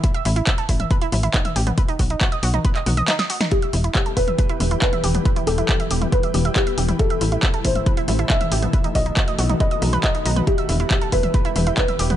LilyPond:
<<
  \new Staff \with { instrumentName = "Felt piano" } { \time 4/4 \key e \minor \tempo 4 = 138 r1 | r1 | g'4. b'4. b'4~ | b'8 a'4. b'4 g'4 |
a'4. c''4. e''4~ | e''8 dis''4. dis''4 dis''4 | g'4. b'4. b'4 | }
  \new Staff \with { instrumentName = "Synth arpeggio sound" } { \time 4/4 \key e \minor e'16 e''16 e'16 e'16 e''16 a'16 e'16 e''16 b'16 e'16 e'16 e'16 dis'16 e''16 g'16 b16 | b'16 dis'16 fis'16 dis'16 fis'16 dis''16 fis'16 dis'16 b'16 dis''16 fis'16 dis''16 dis'16 dis''16 fis'16 dis'16 | e'16 e''16 e'16 e'16 e''16 a'16 e'16 e''16 b'16 e'16 e'16 e'16 dis'16 e''16 g'16 b16 | b'16 e'16 g'16 e'16 g'16 e''16 g'16 e'16 b'16 e''16 g'16 e''16 e'16 e''16 g'16 e'16 |
e'16 e''16 e'16 e'16 e''16 a'16 e'16 e''16 b'16 e'16 e'16 e'16 dis'16 e''16 g'16 b16 | b'16 dis'16 fis'16 dis'16 fis'16 dis''16 fis'16 dis'16 b'16 dis''16 dis'16 b'16 dis'16 dis'16 dis'16 b'16 | e'16 e''16 e'16 e'16 e''16 a'16 e'16 e''16 b'16 e'16 e'16 e'16 dis'16 e''16 g'16 b16 | }
  \new Staff \with { instrumentName = "Analog synth bass" } { \clef bass \time 4/4 \key e \minor r8 a,,8 r8 a,,8 r8 a,,8 r8 a,,8 | r8 b,,8 r8 b,,8 r8 b,,8 r4 | r8 e,,8 r8 e,,8 r8 e,,8 r8 e,,8 | r8 e,,8 r8 e,,8 r8 e,,8 r8 e,,8 |
r8 a,,8 r8 a,,8 r8 a,,8 r8 a,,8 | r8 b,,8 r8 b,,8 r8 b,,8 r8 b,,8 | r8 e,,8 r8 e,,8 r8 e,,8 r8 e,,8 | }
  \new DrumStaff \with { instrumentName = "Drums" } \drummode { \time 4/4 <hh bd>16 hh16 hho16 hh16 <hc hh bd>16 hh16 <hho bd>16 <hh toml>16 <hh bd>16 hh16 <hho toml>16 hh16 <hc hh bd>16 <hh toml>16 hho16 <hh toml>16 | <hh bd>16 hh16 <hho bd>16 hh16 <hc hh bd>16 hh16 hho16 <hh toml>16 <hh bd>16 <hc hh>16 <hho toml>16 <hh toml>16 <hc hh sn>16 <hh sn>16 hho16 <hh sn toml>16 | <hh bd>16 hh16 hho16 hh16 <hc hh bd>16 hh16 <hho bd>16 <hh toml>16 <hh bd>16 hh16 <hho toml>16 hh16 <hc hh bd>16 <hh toml>16 hho16 <hh toml>16 | <hh bd>16 hh16 hho16 hh16 <hc hh bd>16 hh16 hho16 <hh toml>16 <hh bd>16 hh16 <hho toml>16 hh16 <hc hh bd>16 hh16 hho16 <hh toml>16 |
<hh bd>16 hh16 hho16 hh16 <hc hh bd>16 hh16 <hho bd>16 <hh toml>16 <hh bd>16 hh16 <hho toml>16 hh16 <hc hh bd>16 <hh toml>16 hho16 <hh toml>16 | <hh bd>16 hh16 <hho bd>16 hh16 <hc hh bd>16 hh16 hho16 <hh toml>16 <hh bd>16 hh16 <hho toml>16 <hh toml>16 <hc hh bd>16 hh16 hho16 <hh toml>16 | <hh bd>16 hh16 hho16 hh16 <hc hh bd>16 hh16 <hho bd>16 <hh toml>16 <hh bd>16 hh16 <hho toml>16 hh16 <hc hh bd>16 <hh toml>16 hho16 <hh toml>16 | }
>>